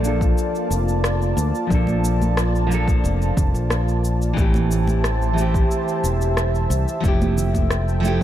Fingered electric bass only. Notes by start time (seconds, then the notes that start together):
Already playing: A#1
0.70 F1
1.37 D2
1.71 A#1
3.04 F1
3.37 F1
3.54 A#1
4.37 A1
6.04 E1
6.70 C2
7.04 F1